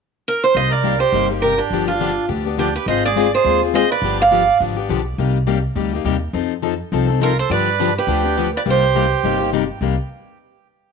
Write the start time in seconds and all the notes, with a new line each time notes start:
0.28 A#4
0.44 C5
0.54 C2 C3 G3 A#3 D#4 G4 C5 D#5
0.70 A#4 D5
0.83 C3 G3 A#3 D#4 G4
0.98 G4 C5
1.12 G1 C3 G3 A#3 D#4 G4
1.30 A#3 D#4 G4
1.40 C3 G3 A#3 G4 A#4
1.44 D#4 G4
1.57 D4 G4
1.70 G1 D3 F3 B3 D4 G4
1.87 D4 F4
2.00 D3 F3 B3 D4 G4
2.28 D2 D3 F3 B3 D4 G4
2.45 B3 D4 G4
2.58 D3 F3 B3 D4 G4
2.75 G4 B4
2.86 G#1 G#3 C4 F4 G#4 C5 D#5
3.05 G#4 D5
3.16 G#3 C4 F4 G#4
3.35 G#4 C5
3.44 D#2 G#3 C4 F4 G#4
3.62 C4 F4 G#4
3.74 G#3 C4 F4 G#4 C5 D#5
3.90 B4 D5
4.02 G1 D3 F3 B3 D4 G4
4.19 D5 F5
4.31 D3 F3 B3 D4 G4
4.60 G#1 D3 F3 B3 D4 G4
4.77 B3 D4 G4
4.89 B1 D3 F3 B3 D4 G4
5.18 C2 C3 G3 A#3 D#4 G4
5.47 C3 G3 A#3 D#4 G4
5.75 D2 C3 G3 A#3 D#4 G4
5.93 A#3 D#4 G4
6.05 D#2 C3 G3 A#3 D#4 G4
6.33 F2 F3 C4 D#4 A4
6.62 F3 C4 D#4 A4
6.92 C2 F3 C4 D#4 A4
7.07 C4 D#4 A4
7.20 F3 C4 D#4 F4 A4 A#4
7.39 A4 C5
7.50 G2 D3 F3 B3 D4 G4 B4 D5
7.80 D3 F3 B3 D4 G4
7.98 G4 B4
8.07 D2 D3 F3 B3 D4 G4
8.24 B3 D4 G4
8.37 D3 F3 B3 D4 G4
8.56 B4 D5
8.66 C2 C3 G3 A#3 D#4 G4
8.70 C5
8.95 C3 G3 A#3 D#4 G4
9.24 G1 C3 G3 A#3 D#4 G4
9.40 A#3 D#4 G4
9.53 C3 G3 A#3 D#4 G4
9.81 C2 C3 G3 A#3 D#4 G4